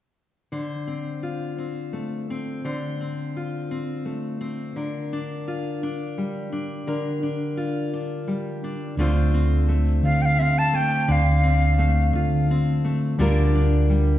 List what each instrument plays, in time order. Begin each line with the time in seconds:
0.52 steel-string acoustic guitar D3 C5
0.87 steel-string acoustic guitar C4
1.23 steel-string acoustic guitar F4
1.58 steel-string acoustic guitar C4
1.93 steel-string acoustic guitar A3
2.30 steel-string acoustic guitar C4
2.65 steel-string acoustic guitar D3 C5
3.01 steel-string acoustic guitar C4
3.36 steel-string acoustic guitar F4
3.71 steel-string acoustic guitar C4
4.05 steel-string acoustic guitar A3
4.41 steel-string acoustic guitar C4
4.76 steel-string acoustic guitar D3 A#4
5.13 steel-string acoustic guitar D4
5.48 steel-string acoustic guitar F4
5.83 steel-string acoustic guitar D4
6.18 steel-string acoustic guitar G3
6.52 steel-string acoustic guitar D4
6.87 steel-string acoustic guitar D3 A#4
7.23 steel-string acoustic guitar D4
7.57 steel-string acoustic guitar F4
7.93 steel-string acoustic guitar D4
8.28 steel-string acoustic guitar G3
8.64 steel-string acoustic guitar D4
8.97 fingered electric bass D2, steel-string acoustic guitar D3 A3 C4 F4
9.01 steel-string acoustic guitar C5
9.34 steel-string acoustic guitar C4
9.68 steel-string acoustic guitar A3
10.03 fingered electric bass D3, steel-string acoustic guitar F4, flute F5
10.22 flute F5 G5
10.39 steel-string acoustic guitar C4, flute E5 F5
10.58 flute A5
10.73 steel-string acoustic guitar A3, flute G5
11.08 fingered electric bass D2, steel-string acoustic guitar D3, flute F5
11.43 steel-string acoustic guitar C4
11.78 steel-string acoustic guitar A3
12.13 fingered electric bass D3, steel-string acoustic guitar F4
12.51 steel-string acoustic guitar C4
12.85 steel-string acoustic guitar A3
13.19 fingered electric bass D2, steel-string acoustic guitar D3 G3 D4 F4 A#4
13.55 steel-string acoustic guitar D4
13.90 steel-string acoustic guitar G3